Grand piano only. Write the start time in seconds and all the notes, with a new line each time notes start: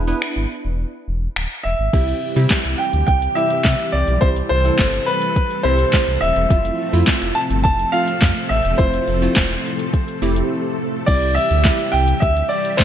1.64 E5
2.78 G5
3.07 G5
3.35 E5
3.92 D5
4.21 C5
4.49 C5
5.06 B4
5.63 C5
6.21 E5
7.35 A5
7.64 A5
7.92 F5
8.49 E5
8.78 C5
11.06 D5
11.35 E5
11.92 G5
12.20 E5
12.49 D5
12.77 C5